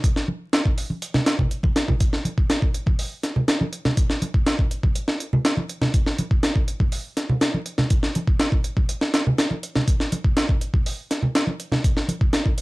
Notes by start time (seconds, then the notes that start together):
0.04 kick, closed hi-hat
0.16 snare
0.28 high conga
0.53 snare, closed hi-hat
0.65 kick
0.78 open hi-hat
0.90 high conga
1.02 closed hi-hat
1.14 snare, low conga
1.26 snare, closed hi-hat
1.39 kick, low conga
1.51 closed hi-hat
1.63 kick, high conga
1.76 snare, closed hi-hat
1.88 kick, low conga
2.00 kick, closed hi-hat
2.13 snare
2.25 closed hi-hat, high conga
2.38 kick
2.50 snare, closed hi-hat
2.62 kick
2.74 closed hi-hat
2.86 kick, high conga
2.99 open hi-hat
3.23 snare, closed hi-hat
3.36 low conga
3.48 snare, closed hi-hat
3.61 high conga
3.73 closed hi-hat
3.85 snare, low conga
3.97 kick, closed hi-hat
4.10 snare
4.22 closed hi-hat, high conga
4.34 kick
4.46 snare, closed hi-hat
4.59 kick
4.71 closed hi-hat
4.83 kick, high conga
4.95 closed hi-hat
5.08 snare
5.20 closed hi-hat
5.33 low conga
5.45 snare, closed hi-hat
5.57 high conga
5.69 closed hi-hat
5.81 snare, low conga
5.94 kick, closed hi-hat
6.06 snare
6.18 closed hi-hat, high conga
6.31 kick
6.43 snare, closed hi-hat
6.56 kick
6.68 closed hi-hat
6.80 kick, high conga
6.92 open hi-hat
7.17 snare, closed hi-hat
7.29 low conga
7.41 snare, closed hi-hat
7.54 high conga
7.66 closed hi-hat
7.78 snare, low conga
7.90 kick, closed hi-hat
8.03 snare
8.15 closed hi-hat, high conga
8.27 kick
8.40 snare, closed hi-hat
8.52 kick
8.64 closed hi-hat
8.77 kick, high conga
8.89 closed hi-hat
9.01 snare
9.14 snare, closed hi-hat
9.27 low conga
9.38 snare, closed hi-hat
9.51 high conga
9.63 closed hi-hat
9.75 snare, low conga
9.88 kick, closed hi-hat
10.00 snare
10.12 closed hi-hat, high conga
10.24 kick
10.37 snare, closed hi-hat
10.49 kick
10.61 closed hi-hat
10.74 kick, high conga
10.86 open hi-hat
11.11 snare, closed hi-hat
11.22 low conga
11.35 snare, closed hi-hat
11.47 high conga
11.60 closed hi-hat
11.72 snare, low conga
11.84 kick, closed hi-hat
11.97 snare
12.08 closed hi-hat, high conga
12.21 kick
12.33 snare, closed hi-hat
12.46 kick
12.58 closed hi-hat